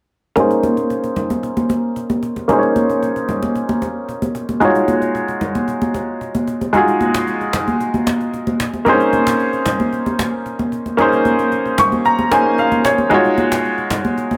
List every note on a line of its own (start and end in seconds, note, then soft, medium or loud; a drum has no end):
0.36 2.45 A#3 medium
0.36 2.45 C#4 medium
0.36 2.46 D#4 medium
0.36 2.46 G#4 medium
0.36 cajon slap soft
0.36 low conga medium
0.40 2.47 C5 medium
0.51 cajon slap soft
0.63 cajon slap soft
0.63 high conga medium
0.77 cajon slap soft
0.90 cajon slap soft
1.04 cajon slap soft
1.16 cajon slap soft
1.16 low conga medium
1.30 cajon slap soft
1.30 high conga medium
1.43 cajon slap soft
1.57 cajon slap soft
1.57 high conga medium
1.70 cajon slap soft
1.70 high conga medium
1.96 cajon slap soft
2.10 cajon slap soft
2.10 high conga medium
2.23 cajon slap soft
2.36 cajon slap soft
2.36 high conga medium
2.48 4.57 A#3 medium
2.48 4.57 C#4 medium
2.48 4.58 D#4 medium
2.48 4.59 G#4 medium
2.48 cajon slap soft
2.48 low conga medium
2.52 2.57 C5 medium
2.59 4.62 C#5 medium
2.63 cajon slap soft
2.76 cajon slap soft
2.76 high conga medium
2.90 cajon slap soft
3.03 cajon slap soft
3.16 cajon slap soft
3.29 cajon slap soft
3.29 low conga medium
3.43 cajon slap soft
3.43 high conga medium
3.55 cajon slap soft
3.69 cajon slap soft
3.69 high conga medium
3.82 cajon slap soft
3.82 high conga medium
4.09 cajon slap soft
4.22 cajon slap soft
4.22 high conga medium
4.35 cajon slap soft
4.49 cajon slap soft
4.49 high conga medium
4.60 6.69 G#3 medium
4.60 6.70 D#4 medium
4.60 6.70 F4 medium
4.60 6.71 F#4 medium
4.60 cajon slap soft
4.60 low conga medium
4.65 6.72 C#5 medium
4.75 cajon slap soft
4.88 cajon slap soft
4.88 high conga medium
5.02 cajon slap soft
5.15 cajon slap soft
5.28 cajon slap soft
5.41 cajon slap soft
5.41 low conga medium
5.55 cajon slap soft
5.55 high conga medium
5.68 cajon slap soft
5.82 cajon slap soft
5.82 high conga medium
5.94 cajon slap soft
5.94 high conga medium
6.21 cajon slap soft
6.35 cajon slap soft
6.35 high conga medium
6.47 cajon slap soft
6.61 cajon slap soft
6.61 high conga medium
6.73 8.82 G#3 medium
6.73 8.82 D#4 medium
6.73 8.83 F4 medium
6.73 8.83 F#4 medium
6.73 cajon slap soft
6.73 low conga medium
6.77 8.84 G#4 medium
6.88 cajon slap soft
7.01 cajon slap soft
7.01 high conga medium
7.14 cajon slap medium
7.27 cajon slap soft
7.41 cajon slap soft
7.53 cajon slap medium
7.53 low conga medium
7.68 cajon slap soft
7.68 high conga medium
7.80 cajon slap soft
7.94 cajon slap soft
7.94 high conga medium
8.07 cajon slap medium
8.07 high conga medium
8.21 cajon slap soft
8.34 cajon slap soft
8.47 cajon slap soft
8.47 high conga medium
8.60 cajon slap medium
8.73 cajon slap soft
8.73 high conga medium
8.85 10.94 A#3 medium
8.85 8.93 C4 medium
8.85 10.95 D#4 medium
8.85 10.96 G#4 medium
8.85 cajon slap soft
8.85 low conga medium
8.89 10.97 C#4 medium
8.89 10.96 C5 medium
9.00 cajon slap soft
9.13 cajon slap soft
9.13 high conga medium
9.27 cajon slap medium
9.40 cajon slap soft
9.53 cajon slap soft
9.66 cajon slap medium
9.66 low conga medium
9.80 cajon slap soft
9.80 high conga medium
9.93 cajon slap soft
10.06 cajon slap soft
10.06 high conga medium
10.19 cajon slap medium
10.19 high conga medium
10.46 cajon slap soft
10.59 cajon slap soft
10.59 high conga medium
10.72 cajon slap soft
10.86 cajon slap soft
10.86 high conga soft
10.97 12.28 A#3 medium
10.97 12.29 C#4 medium
10.97 12.29 D#4 medium
10.97 12.30 G#4 medium
10.97 cajon slap soft
10.97 low conga medium
11.02 12.30 C5 medium
11.12 cajon slap soft
11.25 cajon slap soft
11.25 high conga medium
11.39 cajon slap soft
11.52 cajon slap soft
11.66 cajon slap soft
11.78 12.04 C#6 medium
11.78 cajon slap medium
11.78 low conga medium
11.92 cajon slap soft
11.92 high conga medium
12.05 12.30 A#5 medium
12.05 cajon slap soft
12.19 cajon slap soft
12.19 high conga medium
12.31 13.11 A#3 medium
12.31 13.11 C#4 medium
12.31 13.09 D#4 medium
12.31 13.12 G#4 medium
12.31 13.12 C5 medium
12.31 12.57 G#5 medium
12.31 cajon slap medium
12.31 high conga medium
12.58 12.83 F5 medium
12.58 cajon slap soft
12.72 cajon slap soft
12.72 high conga medium
12.85 13.10 C#5 medium
12.85 cajon slap medium
12.98 cajon slap soft
12.98 high conga medium
13.10 14.37 G#3 medium
13.10 14.37 D#4 medium
13.10 14.37 F4 medium
13.10 14.37 F#4 medium
13.10 cajon slap soft
13.10 low conga medium
13.14 14.37 C#5 medium
13.25 cajon slap soft
13.38 cajon slap soft
13.38 high conga medium
13.52 cajon slap medium
13.64 cajon slap soft
13.78 cajon slap soft
13.90 cajon slap medium
13.90 low conga medium
14.05 cajon slap soft
14.05 high conga medium
14.18 cajon slap soft
14.31 cajon slap soft
14.31 high conga medium